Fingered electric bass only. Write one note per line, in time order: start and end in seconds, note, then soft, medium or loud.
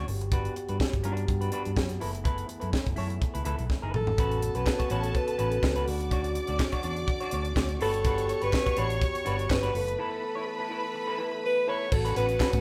0.07 0.47 G1 medium
0.69 0.78 G2 medium
0.94 1.03 G1 loud
1.05 1.25 G2 loud
1.29 1.48 G2 loud
1.66 1.78 G2 medium
1.77 1.97 F#2 medium
2.02 2.41 F#1 medium
2.63 2.72 F#2 medium
2.87 2.96 F#1 loud
2.98 3.18 F#2 loud
3.35 3.44 C#2 medium
3.46 3.57 C#2 medium
3.59 3.68 B1 medium
3.83 3.92 F#1 medium
3.94 4.05 A1 medium
4.07 4.16 G#1 medium
4.18 4.49 A1 loud
4.55 4.65 B1 medium
4.91 5.11 A1 loud
5.39 5.59 A1 medium
5.63 5.83 C#2 medium
5.88 6.38 D2 medium
6.49 6.58 D2 medium
6.84 7.04 E2 medium
7.33 7.53 D2 loud
7.56 7.76 D2 medium
7.81 8.31 G1 medium
8.42 8.51 G1 medium
8.78 8.98 A1 loud
9.27 9.46 G1 medium
9.50 9.70 G1 medium
9.75 9.94 F#1 medium
11.92 12.12 A1 loud
12.16 12.36 A1 medium
12.54 12.61 A2 medium